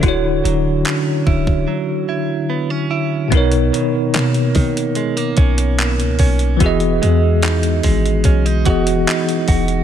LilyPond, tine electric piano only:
\new Staff \with { instrumentName = "Tine electric piano" } { \time 4/4 \key b \major \tempo 4 = 73 <d d' e' fis' cis''>1 | <b, b dis' ais' cis''>1 | <e b fis' gis' dis''>2~ <e b fis' gis' dis''>8 <e b fis' gis' dis''>4. | }